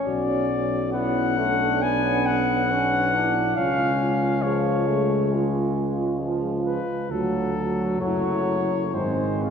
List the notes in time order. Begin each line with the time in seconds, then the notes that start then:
Already playing: C#4
0.06 B1 F#4 D5
0.92 B3 E4 F#5
1.38 A3 D4
1.82 B3 G#5
2.26 F#5
2.71 B3 C#4 D4
3.15 D4 E4
3.56 C#2 G#3 C#4 F5
3.60 F4
4.02 F4
4.42 F3 G#4 C#5
4.88 A3
5.32 G#3 F4
5.77 F4
6.22 F3
6.66 B4
7.10 D2 F#3 F#4 A4
7.99 F#1 A3 E4 C#5
8.94 G#1 G#3 C4 C5
8.98 D#4
9.43 F4